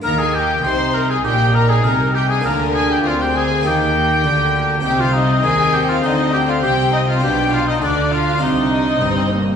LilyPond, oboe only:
\new Staff \with { instrumentName = "Oboe" } { \time 4/4 \key ees \major \tempo 4 = 100 bes'16 aes'16 g'8 c''8 bes'16 aes'16 g'8 bes'16 aes'16 bes'8 g'16 aes'16 | bes'8 aes'16 g'16 f'16 g'16 aes'8 g'2 | g'16 f'16 ees'8 aes'8 g'16 f'16 ees'8 g'16 f'16 g'8 ees'16 f'16 | g'8 f'16 ees'16 d'8 f'8 ees'4. r8 | }